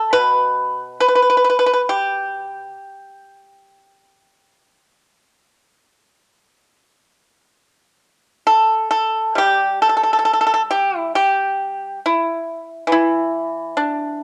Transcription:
Already playing: A4
0.13 B2 B4
1.00 B4
1.08 B4
1.15 B4
1.22 B4
1.30 B4
1.37 B4
1.44 B4
1.50 B4
1.59 B4
1.66 B4
1.73 B4
1.89 G4
8.47 A4
8.91 A4
9.35 G3 G4
9.82 A4
9.89 A4
9.97 A4
10.03 A4
10.13 A4
10.19 A4
10.25 A4
10.33 A4
10.41 A4
10.47 A4
10.54 A4
10.71 G4
10.99 E4
11.15 G4
12.06 E4
12.87 E3
12.92 E4
13.77 D4

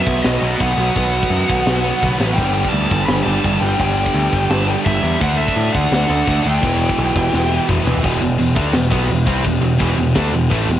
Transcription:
Already playing: B2 D#3 F#3 B3 F#4 B4 E5 F#5
0.07 B1, kick
0.22 B1 D#5, snare, crash
0.41 B1 B2 F#3 B3
0.56 B2 F#5
0.60 B1 F#3 B3, kick, crash
0.73 B1 F#5
0.77 B2 F#3 B3
0.95 B1 B2 F#3 B3, kick, crash
1.23 kick
1.30 F#2, crash
1.50 B1, kick
1.66 B1, snare, crash
1.84 B2 F#3 B3
2.01 B1 B2 F#3 B3, kick, high tom
2.19 A1 B2 F#3 B3, snare
2.34 G2 G5
2.38 G1 D3 G3 D4 G4 G5, kick, crash
2.65 kick
2.69 A5
2.73 D2, crash
2.91 G1, kick
3.06 G1 B5, snare, crash
3.23 G1 G3 A5
3.27 G2 D3
3.44 G1 G2 D3 G3, kick, crash
3.60 G1 G2 D3 G3 G5
3.78 G1 G2 D3 G3, kick, crash
4.06 kick
4.14 D2, crash
4.33 G1, kick
4.50 G1 A5, snare, crash
4.67 G2 D3 G3 G5
4.85 G1 G2 D3 G3 E5, kick, crash
5.02 E2 G2 D3 G3
5.21 D2 D3 A3 D4 F#4 A4 F#5, kick, crash
5.38 E5
5.48 kick
5.56 A2, crash
5.73 D2 F#5, kick
5.92 D2, snare, crash
6.09 D2 D3 A3 D4
6.26 D2 D3 A3 D4, kick, crash
6.43 D2 A3 D4 G5
6.48 D3
6.61 E1 E2 B2 E3 E4 G4 B4 G5, kick, crash
6.89 kick
6.98 B1, crash
7.15 E1, kick
7.33 E1, snare
7.50 E2 B2 E3
7.68 E1 E2 B2 E3, kick, mid tom
7.85 E1 B2 E3, floor tom
7.89 E2
8.03 E1 E2 B2 E3 E4 G4 B4 G5, kick, china
8.21 E1 E2 B2
8.38 E1 E2 B2, china
8.56 D2 D3 A3 D4, kick
8.73 E1 E2 B2, snare, china
8.91 B1 B2 F#3 B3, kick
9.08 E1 E2 B2, china
9.26 C2 C3 G3 C4, kick
9.44 E1 E2 B2, kick, china
9.61 E1 E2 B2
9.78 E1 E2 B2 E3, kick, china
9.96 E1 E2 B2
10.15 D2 D3 A3 D4, kick, snare, china
10.32 E1 E2 B2
10.51 A1 A2 E3 A3, kick, china
10.67 E1 E2 B2

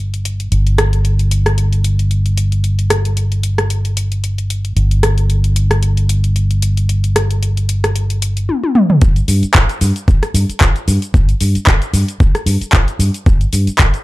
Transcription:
Already playing: G1
0.14 closed hi-hat
0.25 closed hi-hat
0.40 closed hi-hat
0.52 G1, closed hi-hat
0.67 closed hi-hat
0.78 cross-stick, closed hi-hat
0.93 closed hi-hat
1.05 closed hi-hat
1.19 closed hi-hat
1.31 closed hi-hat
1.46 cross-stick, closed hi-hat
1.58 closed hi-hat
1.73 closed hi-hat
1.84 closed hi-hat
1.99 closed hi-hat
2.11 closed hi-hat
2.26 closed hi-hat
2.38 closed hi-hat
2.52 closed hi-hat
2.64 closed hi-hat
2.79 closed hi-hat
2.90 cross-stick, closed hi-hat
3.05 closed hi-hat
3.17 closed hi-hat
3.32 closed hi-hat
3.43 closed hi-hat
3.58 cross-stick, closed hi-hat
3.70 closed hi-hat
3.85 closed hi-hat
3.97 closed hi-hat
4.12 closed hi-hat
4.24 closed hi-hat
4.38 closed hi-hat
4.50 closed hi-hat
4.65 closed hi-hat
4.76 G1, closed hi-hat
4.91 closed hi-hat
5.03 cross-stick, closed hi-hat
5.18 closed hi-hat
5.30 closed hi-hat
5.44 closed hi-hat
5.56 closed hi-hat
5.71 cross-stick, closed hi-hat
5.83 closed hi-hat
5.97 closed hi-hat
6.09 closed hi-hat
6.24 closed hi-hat
6.36 closed hi-hat
6.51 closed hi-hat
6.62 closed hi-hat
6.77 closed hi-hat
6.89 closed hi-hat
7.04 closed hi-hat
7.16 cross-stick, closed hi-hat
7.31 closed hi-hat
7.43 closed hi-hat
7.57 closed hi-hat
7.69 closed hi-hat
7.84 cross-stick, closed hi-hat
7.96 closed hi-hat
8.10 closed hi-hat
8.22 closed hi-hat
8.37 closed hi-hat
8.49 high tom
8.64 high tom
8.75 mid tom
8.90 mid tom
9.01 G1, kick, closed hi-hat, shaker
9.16 closed hi-hat, shaker
9.28 G2, open hi-hat, shaker
9.43 muted fingered electric bass stroke, closed hi-hat, shaker
9.54 G1, kick, clap, closed hi-hat, shaker
9.69 closed hi-hat, shaker
9.81 G2, open hi-hat, shaker
9.96 closed hi-hat, shaker
10.08 G1, kick, closed hi-hat, shaker
10.23 cross-stick, closed hi-hat, shaker
10.34 G2, open hi-hat, shaker
10.49 muted fingered electric bass stroke, closed hi-hat, shaker
10.61 G1, kick, clap, closed hi-hat, shaker
10.76 closed hi-hat, shaker
10.88 G2, open hi-hat, shaker
11.02 closed hi-hat, shaker
11.14 G1, kick, closed hi-hat, shaker
11.29 closed hi-hat, shaker
11.40 G2, open hi-hat, shaker
11.55 muted fingered electric bass stroke, closed hi-hat, shaker
11.67 G1, kick, clap, closed hi-hat, shaker
11.82 closed hi-hat, shaker
11.93 G2, open hi-hat, shaker
12.08 closed hi-hat, shaker
12.20 G1, kick, closed hi-hat, shaker
12.35 cross-stick, closed hi-hat, shaker
12.46 G2, open hi-hat, shaker
12.61 muted fingered electric bass stroke, closed hi-hat, shaker
12.73 G1, kick, clap, closed hi-hat, shaker
12.88 closed hi-hat, shaker
12.99 G2, open hi-hat, shaker
13.14 closed hi-hat, shaker
13.26 G1, kick, closed hi-hat, shaker
13.41 closed hi-hat, shaker
13.53 G2, open hi-hat, shaker
13.67 muted fingered electric bass stroke, closed hi-hat, shaker
13.79 G1, kick, clap, closed hi-hat, shaker
13.94 closed hi-hat, shaker

